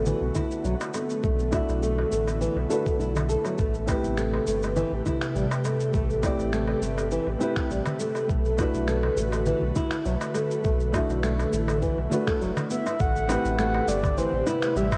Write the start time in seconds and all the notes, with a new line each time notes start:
Already playing: A1 D3 A3 B3 D4 F#4 B4 D5
0.05 E3, darbuka dum, shaker
0.21 B1
0.35 E4, kick, darbuka ka, darbuka dum, shaker
0.51 shaker
0.64 B1 F#3, shaker
0.80 darbuka tek, shaker
0.94 A3, darbuka tek, shaker
1.10 shaker
1.23 B1 A3 E4, kick, shaker
1.39 shaker
1.50 A3 D4 E4 F#4 E5, kick, darbuka tek, shaker
1.69 B1, darbuka tek, shaker
1.82 A3, shaker
1.98 darbuka ka
2.12 A1 A3, shaker
2.27 darbuka ka, shaker
2.41 E3, shaker
2.56 B1, darbuka ka
2.69 A3 D4 F#4 A4, shaker
2.73 B4
2.86 A3, kick, shaker
3.00 B1 E4, shaker
3.16 darbuka tek, darbuka dum, shaker
3.29 A4, shaker
3.45 F#3, darbuka ka, shaker
3.58 A1 C3 A3 G4 B4, kick, shaker
3.74 shaker
3.86 A3 C4 E4 G4, kick, darbuka tek, shaker
3.90 B4
4.03 A1, shaker
4.18 A3, finger snap, shaker
4.34 darbuka ka
4.47 G1 A3, shaker
4.63 darbuka ka, shaker
4.76 E3, darbuka dum, shaker
4.92 A1
5.06 E4, kick, darbuka ka, darbuka dum, shaker
5.21 finger snap, shaker
5.35 A1 G3, shaker
5.51 darbuka tek, shaker
5.65 A3, darbuka tek, shaker
5.80 shaker
5.94 A1 A3, kick, shaker
6.10 shaker
6.22 A3 C4 E4 G4, kick, darbuka tek, shaker
6.26 D5
6.38 A1, darbuka tek, shaker
6.53 A3, finger snap, shaker
6.68 darbuka ka
6.82 G1 A3, shaker
6.98 darbuka ka, shaker
7.11 E3, shaker
7.27 A1, darbuka ka
7.39 A3 C4 E4 G4, shaker
7.43 B4
7.56 finger snap, kick, shaker
7.70 A1 G3, shaker
7.86 darbuka tek, darbuka dum, shaker
8.00 A3, shaker
8.15 darbuka ka, shaker
8.28 B1 D3 A3 F#4, kick, shaker
8.45 shaker
8.57 A3 D4 E4 F#4 B4, kick, darbuka tek, shaker
8.74 B1, shaker
8.88 A3, finger snap, shaker
9.03 darbuka ka
9.17 A1 A3, shaker
9.32 darbuka ka, shaker
9.46 E3, darbuka dum, shaker
9.62 B1
9.76 E4, kick, darbuka ka, darbuka dum, shaker
9.91 finger snap, shaker
10.05 B1 F#3, shaker
10.21 darbuka tek, shaker
10.34 A3, darbuka tek, shaker
10.51 shaker
10.64 B1 A3 E4, kick, shaker
10.80 shaker
10.92 A3 D4 E4 F#4, kick, darbuka tek, shaker
10.96 E5
11.09 B1, darbuka tek, shaker
11.23 A3, finger snap, shaker
11.39 darbuka ka, shaker
11.53 A1 A3, shaker
11.68 darbuka ka, shaker
11.82 E3, kick, shaker
11.97 B1, darbuka ka
12.10 A3 D4 F#4 B4, darbuka dum, shaker
12.27 A3, finger snap, kick, shaker
12.40 F#1 F#3, shaker
12.57 darbuka tek, darbuka dum, shaker
12.71 B3 E5, shaker
12.86 E4, darbuka ka, shaker
13.00 A1 C3 A3 G4 B4 F#5, kick, shaker
13.16 shaker
13.27 A3 C4 E4 G4, darbuka tek, shaker
13.31 B4
13.45 A1, shaker
13.59 A3 F#5, finger snap, shaker
13.75 darbuka ka
13.87 G1 A3 D5, shaker
14.04 kick, darbuka ka, darbuka dum, shaker
14.18 E3 C5, shaker
14.33 A1
14.47 E4 B4, darbuka ka, shaker
14.62 finger snap, shaker
14.76 A1 G3 E5, shaker
14.92 kick, darbuka tek, shaker